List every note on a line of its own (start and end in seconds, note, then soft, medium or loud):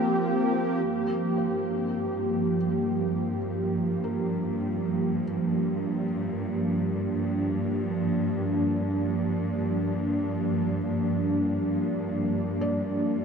0.00 13.25 F3 medium
0.00 13.25 A#3 medium
0.00 5.09 C4 medium
0.00 13.25 G4 medium
0.83 13.25 G2 medium
1.38 13.25 D4 medium
1.38 2.57 C5 soft
4.04 5.24 A#4 medium
12.61 13.25 D5 medium